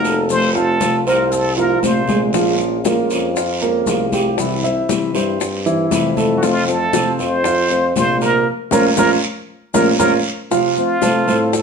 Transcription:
Already playing: tuba F1, nylon-string guitar D#3 A#3 D#4 F#4, muted trumpet A#4
0.04 grand piano A4, short guiro, maracas
0.29 nylon-string guitar C3 F3 A3 C4 F4, muted trumpet C5, high conga, long guiro, maracas
0.55 nylon-string guitar A3 C4 F4, grand piano F4 F5, muted trumpet A4, high conga, maracas
0.80 nylon-string guitar C3 F3 A3 C4 F4, high conga, short guiro, maracas
1.05 tuba C2, nylon-string guitar A3 C4 F4, grand piano C4 C5, muted trumpet A#4, high conga, short guiro, maracas
1.28 muted trumpet A4 A#4, high conga, long guiro, maracas
1.33 muted nylon-string guitar stroke
1.57 grand piano F3 F4, nylon-string guitar A3 C4 F4, muted trumpet A#4, high conga, maracas
1.82 tuba A#1, nylon-string guitar C3 F3 A3 C4 F4, muted trumpet C5, high conga, short guiro, maracas
2.08 grand piano G#3 G#4, high conga, short guiro, maracas
2.33 nylon-string guitar F3 G#3 C#4 F4, grand piano F3 F4, high bongo, high conga, long guiro, maracas
2.58 nylon-string guitar G#3 C#4 F4, high conga, maracas
2.84 nylon-string guitar F3 G#3 C#4 F4, grand piano A#3 A#4, high bongo, high conga, short guiro, maracas
3.09 tuba F2, nylon-string guitar G#3 C#4 F4, high bongo, high conga, short guiro, maracas
3.36 grand piano F4 F5, muted nylon-string guitar stroke, high bongo, high conga, long guiro, maracas
3.62 nylon-string guitar G#3 C#4 F4, grand piano A#3 A#4, high bongo, high conga, maracas
3.86 tuba C2, nylon-string guitar F3 G#3 C#4 F4, high bongo, low bongo, high conga, short guiro, maracas
4.12 grand piano G4, high bongo, high conga, short guiro, maracas
4.38 nylon-string guitar C3 E3 G3 C4 E4, high bongo, high conga, long guiro, maracas
4.63 nylon-string guitar G3 C4 E4, grand piano E4 E5, high conga, maracas
4.88 nylon-string guitar C3 E3 G3 C4 E4, high bongo, high conga, short guiro, maracas
5.14 tuba G2, nylon-string guitar G3 C4 E4, grand piano C4 C5, high bongo, high conga, short guiro, maracas
5.40 muted nylon-string guitar stroke, high bongo, high conga, long guiro, maracas
5.66 grand piano E3 E4, nylon-string guitar G3 C4 E4, high bongo, high conga, maracas
5.90 tuba F2, nylon-string guitar C3 E3 G3 C4 E4, high bongo, low bongo, high conga, short guiro, maracas
6.17 grand piano A3 A4, high bongo, high conga, short guiro, maracas
6.37 muted trumpet F#4
6.42 nylon-string guitar C3 F3 A3 C4 F4, grand piano F3 F4, muted trumpet F4, high bongo, high conga, long guiro, maracas
6.67 nylon-string guitar A3 C4 F4, muted trumpet A4, high conga, maracas
6.93 nylon-string guitar C3 F3 A3 C4 F4, grand piano C4 C5, high bongo, high conga, short guiro, maracas
7.18 tuba F2, nylon-string guitar A3 C4 F4, muted trumpet C5, high bongo, high conga, short guiro, maracas
7.44 grand piano F4 F5, muted nylon-string guitar stroke, high bongo, high conga, long guiro, maracas
7.70 nylon-string guitar A3 C4 F4, grand piano C4 C5, high bongo, high conga, maracas
7.96 tuba A#1, nylon-string guitar C3 F3 A3 C4 F4, muted trumpet C5, high bongo, low bongo, high conga, short guiro, maracas
8.21 grand piano A#3 A#4, muted trumpet A#4, high bongo, short guiro, maracas
8.71 tuba A#1, nylon-string guitar F3 A#3 C#4, grand piano C#4 F4 A#4, muted trumpet A#4, low bongo, high conga, long guiro, maracas
8.97 tuba A#1, nylon-string guitar F3 A#3 C#4, grand piano C#4 F4 A#4, muted trumpet A#4, low bongo, high conga, long guiro, maracas
9.74 tuba A#1, nylon-string guitar F3 A#3 C#4, grand piano C#4 F4 A#4, muted trumpet A#4, low bongo, high conga, long guiro, maracas
9.99 tuba A#1, nylon-string guitar F3 A#3 C#4, grand piano C#4 F4 A#4, muted trumpet A#4, low bongo, high conga, long guiro, maracas
10.50 nylon-string guitar C3 F3 A3 C4 F4, grand piano F3 F4 F5, high bongo, high conga, long guiro, maracas
10.77 nylon-string guitar A3 C4 F4, muted trumpet F4, high conga, maracas
11.02 nylon-string guitar C3 F3 A3 C4 F4, grand piano A3 A4 C5, high bongo, high conga, short guiro, maracas
11.27 tuba A2, grand piano A3 A4 C5, nylon-string guitar A3 C4, high bongo, high conga, short guiro, maracas
11.53 muted trumpet A4, muted nylon-string guitar stroke, high bongo, high conga, long guiro, maracas

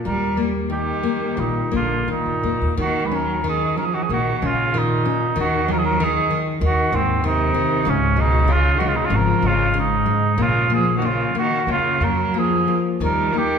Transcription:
0.05 upright bass D#2, nylon-string guitar G3, cello G3, cor anglais A#4
0.37 nylon-string guitar A#3
0.70 nylon-string guitar D#3, cello D#3, cor anglais G4
1.03 nylon-string guitar A#3
1.37 upright bass A#1, cello A#2, nylon-string guitar D#3, cor anglais D#4
1.72 upright bass A#1, cello D3, nylon-string guitar A#3
1.76 cor anglais F4
2.08 cello A#2, nylon-string guitar D#3, cor anglais D#4
2.26 upright bass G2
2.43 upright bass F2, nylon-string guitar A#3
2.61 upright bass D#2
2.77 upright bass D#2, nylon-string guitar D#3, cello D#3, cor anglais F#4
3.04 cello G#3, cor anglais B4
3.11 cello F#3, nylon-string guitar C#4, cor anglais A#4
3.44 nylon-string guitar D#3, cello D#3
3.49 cor anglais G#4
3.75 cello F#3, nylon-string guitar C#4, cor anglais A#4
3.82 cello F3, cor anglais G#4
3.94 cello D#3, cor anglais F#4
4.02 cello F3, cor anglais G#4
4.09 upright bass A#1, cello D#3, nylon-string guitar A#3, cor anglais F#4
4.36 cello D#3, cor anglais F#4
4.42 upright bass A#1, cello C#3, nylon-string guitar C#4, cor anglais F4
4.74 cello A#2, nylon-string guitar D#3
4.78 cor anglais D#4
5.05 nylon-string guitar C#4
5.36 upright bass D#2, nylon-string guitar D#3, cello D#3
5.40 cor anglais F#4
5.68 nylon-string guitar D#3, cello F#3, cor anglais A#4
5.74 cello F3, cor anglais G#4
5.82 cello F#3, cor anglais A#4
6.00 cello D#3, nylon-string guitar D#3, cor anglais G#4
6.31 nylon-string guitar D#3
6.61 upright bass D#2, nylon-string guitar D#3, cello D#3
6.66 cor anglais F#4
6.92 upright bass D#2, cello G#2, nylon-string guitar D#3, cor anglais C4
7.24 cello C3, nylon-string guitar D#3, cor anglais D#4
7.54 nylon-string guitar D#3
7.85 upright bass C#2, cello G#2, nylon-string guitar C#3
7.89 cor anglais C#4
8.16 cello B2, nylon-string guitar G#3
8.21 cor anglais D#4
8.48 nylon-string guitar C#3, cello C#3
8.52 cor anglais F4
8.77 cello D#3, nylon-string guitar G#3, cor anglais F#4
8.85 cello C#3, cor anglais F4
8.95 cello B2, cor anglais D#4
9.04 cello C#3, cor anglais F4
9.10 upright bass G#1, nylon-string guitar C#3
9.15 cello F3, cor anglais A#4
9.42 upright bass G#1, cello C#3, nylon-string guitar G#3
9.47 cor anglais F4
9.74 nylon-string guitar C#3
9.78 cello G#2, cor anglais D#4
10.06 nylon-string guitar G#3
10.38 upright bass A#1, cello C#3, nylon-string guitar A#3
10.42 cor anglais F4
10.70 cello F3, nylon-string guitar A#3
10.74 cor anglais G#4
10.96 cello D#3, cor anglais F#4
11.02 cello C#3, nylon-string guitar A#3, cor anglais F4
11.35 cello D#3, nylon-string guitar A#3, cor anglais F#4
11.67 upright bass F2, cello C#3, nylon-string guitar A#3
11.72 cor anglais F4
12.00 upright bass F2, cello F#3, nylon-string guitar A#3, cor anglais A#4
12.34 cello F3, nylon-string guitar A#3
12.39 cor anglais G#4
12.68 nylon-string guitar A#3
13.00 upright bass D#2, nylon-string guitar D#3, cello G3
13.05 cor anglais A#4
13.33 cello D#3, nylon-string guitar A#3
13.38 cor anglais G4

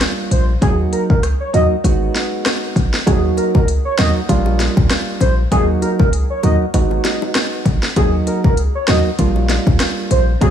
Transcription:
Already playing: synth stab G3 A#3 D4 F4
0.01 cross-stick, snare, closed hi-hat
0.31 808-style bass A#1, soft synth lead C5, closed hi-hat
0.61 808-style bass D#2, synth stab F#3 A#3 D#4 F#4, soft synth lead G#4, kick, closed hi-hat
0.93 soft synth lead A#4, closed hi-hat
1.10 808-style bass C#2, soft synth lead A#4, kick
1.23 cross-stick, closed hi-hat
1.40 soft synth lead C#5
1.53 808-style bass D#2, synth stab F#3 A#3 D#4 F#4, soft synth lead D#5, closed hi-hat
1.84 808-style bass G#1, synth stab G#3 B3 D#4 F#4, kick, closed hi-hat
2.15 snare, closed hi-hat
2.46 cross-stick, snare, closed hi-hat
2.76 808-style bass A#1, kick, closed hi-hat
2.94 snare
3.06 808-style bass D#2, synth stab F#3 A#3 D#4 F#4, soft synth lead G#4, kick, closed hi-hat, high bongo
3.37 soft synth lead A#4, closed hi-hat, high bongo
3.55 808-style bass C#2, soft synth lead A#4, kick, high bongo
3.68 closed hi-hat
3.85 soft synth lead C#5
3.98 808-style bass D#2, synth stab F#3 A#3 D#4 F#4, soft synth lead D#5, cross-stick, snare, closed hi-hat, low bongo
4.29 808-style bass A#1, synth stab G3 A#3 D4 F4, kick, closed hi-hat, high bongo
4.46 high bongo
4.60 snare, closed hi-hat, high bongo
4.77 808-style bass D2, kick, high bongo
4.90 cross-stick, snare, closed hi-hat
5.21 808-style bass A#1, soft synth lead C5, closed hi-hat, low bongo
5.51 808-style bass D#2, synth stab F#3 A#3 D#4 F#4, soft synth lead G#4, kick, closed hi-hat, high bongo
5.82 soft synth lead A#4, closed hi-hat, high bongo
5.99 808-style bass C#2, soft synth lead A#4, kick, high bongo
6.13 closed hi-hat
6.30 soft synth lead C#5
6.43 808-style bass D#2, synth stab F#3 A#3 D#4 F#4, soft synth lead D#5, closed hi-hat, low bongo
6.74 808-style bass G#1, synth stab G#3 B3 D#4 F#4, kick, closed hi-hat, high bongo
6.91 high bongo
7.05 snare, closed hi-hat, high bongo
7.22 high bongo
7.35 cross-stick, snare, closed hi-hat
7.65 808-style bass A#1, kick, closed hi-hat, low bongo
7.83 snare
7.96 808-style bass D#2, synth stab F#3 A#3 D#4 F#4, soft synth lead G#4, kick, closed hi-hat, high bongo
8.27 soft synth lead A#4, closed hi-hat, high bongo
8.44 808-style bass C#2, soft synth lead A#4, kick, high bongo
8.57 closed hi-hat
8.75 soft synth lead C#5
8.88 808-style bass D#2, synth stab F#3 A#3 D#4 F#4, soft synth lead D#5, cross-stick, snare, closed hi-hat, low bongo
9.19 808-style bass A#1, synth stab G3 A#3 D4 F4, kick, closed hi-hat, high bongo
9.36 high bongo
9.49 snare, closed hi-hat, high bongo
9.67 808-style bass D2, kick, high bongo
9.80 cross-stick, snare, closed hi-hat
10.11 808-style bass A#1, soft synth lead C5, closed hi-hat, low bongo
10.41 808-style bass D#2, synth stab F#3 A#3 D#4 F#4, soft synth lead G#4, kick, closed hi-hat, high bongo

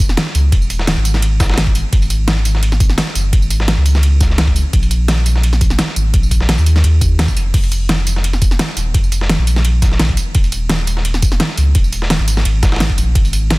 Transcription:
Already playing: sub bass D#1
0.09 snare
0.17 snare, closed hi-hat, ride bell
0.27 snare
0.35 sub bass C#2, closed hi-hat, ride bell, tambourine
0.52 sub bass D#1, kick, closed hi-hat, ride bell
0.62 tambourine
0.70 closed hi-hat, ride bell, tambourine
0.79 snare
0.87 snare, closed hi-hat, ride bell
0.97 sub bass G#1
1.05 closed hi-hat, ride bell, tambourine
1.14 snare
1.22 closed hi-hat, ride bell
1.40 kick, snare, closed hi-hat, open hi-hat, ride bell, tambourine
1.50 snare, open hi-hat
1.54 snare, open hi-hat
1.58 snare, closed hi-hat, ride bell
1.67 kick, closed hi-hat
1.75 closed hi-hat, ride bell, tambourine
1.93 sub bass G#1, kick, closed hi-hat, ride bell
2.02 closed hi-hat, tambourine
2.10 closed hi-hat, ride bell, tambourine
2.28 snare, closed hi-hat, open hi-hat, ride bell
2.45 closed hi-hat, ride bell, tambourine
2.55 snare
2.63 closed hi-hat, ride bell
2.72 snare
2.80 kick, closed hi-hat, ride bell, tambourine
2.90 snare
2.98 snare, closed hi-hat, ride bell
3.07 snare
3.15 sub bass F#1, closed hi-hat, ride bell, tambourine
3.33 sub bass G#1, kick, closed hi-hat, ride bell
3.42 tambourine
3.50 closed hi-hat, ride bell, tambourine
3.60 snare
3.68 snare, closed hi-hat, ride bell
3.77 sub bass C#2
3.86 closed hi-hat, ride bell, tambourine
3.95 snare
4.03 closed hi-hat, ride bell
4.21 kick, snare, closed hi-hat, ride bell, tambourine
4.30 snare
4.38 snare, closed hi-hat, ride bell
4.47 kick, closed hi-hat
4.56 closed hi-hat, ride bell, tambourine
4.73 sub bass A#1, kick, closed hi-hat, ride bell
4.83 closed hi-hat, tambourine
4.91 closed hi-hat, ride bell, tambourine
5.08 snare, closed hi-hat, open hi-hat, ride bell
5.26 closed hi-hat, ride bell, tambourine
5.36 snare
5.43 closed hi-hat, ride bell
5.53 snare
5.61 kick, closed hi-hat, ride bell, tambourine
5.70 snare
5.79 snare, closed hi-hat, ride bell
5.88 snare
5.96 sub bass G#1, closed hi-hat, ride bell, tambourine
6.14 sub bass A#1, kick, closed hi-hat, ride bell
6.23 tambourine
6.31 kick, closed hi-hat, ride bell, tambourine
6.41 snare
6.49 snare, closed hi-hat, ride bell
6.58 sub bass D#2, tambourine
6.66 closed hi-hat, ride bell, tambourine
6.76 snare
6.84 sub bass D#2, closed hi-hat, ride bell
7.01 kick, closed hi-hat, ride bell, tambourine
7.19 snare, closed hi-hat, open hi-hat, ride bell
7.28 kick, tambourine
7.36 sub bass F1, closed hi-hat, ride bell, tambourine
7.54 sub bass F1, kick, closed hi-hat, crash, ride bell
7.63 closed hi-hat, tambourine
7.72 closed hi-hat, ride bell, tambourine
7.89 snare, closed hi-hat, open hi-hat, ride bell
8.07 closed hi-hat, ride bell, tambourine
8.16 snare
8.24 closed hi-hat, ride bell
8.33 snare
8.42 kick, closed hi-hat, ride bell, tambourine
8.51 snare
8.59 snare, closed hi-hat, ride bell
8.69 snare
8.77 sub bass D#1, closed hi-hat, ride bell, tambourine
8.94 sub bass F1, kick, closed hi-hat, ride bell
9.04 tambourine
9.12 closed hi-hat, ride bell, tambourine
9.21 snare
9.29 snare, closed hi-hat, ride bell
9.39 sub bass A#1
9.47 closed hi-hat, ride bell, tambourine
9.56 snare
9.65 closed hi-hat, ride bell
9.82 kick, snare, closed hi-hat, ride bell, tambourine
9.92 snare
9.99 snare, closed hi-hat, ride bell
10.09 kick, closed hi-hat
10.17 closed hi-hat, ride bell, tambourine
10.35 sub bass D#1, kick, closed hi-hat, ride bell
10.44 closed hi-hat, tambourine
10.52 closed hi-hat, ride bell, tambourine
10.70 snare, closed hi-hat, open hi-hat, ride bell
10.87 closed hi-hat, ride bell, tambourine
10.97 snare
11.05 closed hi-hat, ride bell
11.14 snare
11.22 kick, closed hi-hat, ride bell, tambourine
11.32 snare
11.40 snare, closed hi-hat, ride bell
11.49 snare
11.57 sub bass C#2, closed hi-hat, ride bell, tambourine
11.75 sub bass D#1, kick, closed hi-hat, ride bell
11.84 tambourine
11.93 closed hi-hat, ride bell, tambourine
12.02 snare
12.10 snare, closed hi-hat, ride bell
12.20 sub bass G#1
12.28 closed hi-hat, ride bell, tambourine
12.37 snare
12.45 sub bass G#1, closed hi-hat, ride bell
12.63 kick, snare, closed hi-hat, open hi-hat, ride bell, tambourine
12.72 snare, open hi-hat
12.76 snare, open hi-hat
12.80 snare, closed hi-hat, ride bell
12.90 kick, closed hi-hat
12.98 sub bass A#1, closed hi-hat, ride bell, tambourine
13.15 sub bass G#1, kick, closed hi-hat, ride bell
13.25 closed hi-hat, tambourine
13.33 closed hi-hat, ride bell, tambourine
13.50 snare, closed hi-hat, open hi-hat, ride bell

